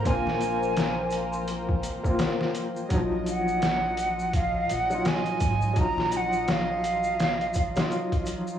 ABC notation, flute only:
X:1
M:4/4
L:1/8
Q:"Swing 16ths" 1/4=84
K:Ebdor
V:1 name="Flute"
a4 z4 | z g3 f g a2 | b g f4- f z |]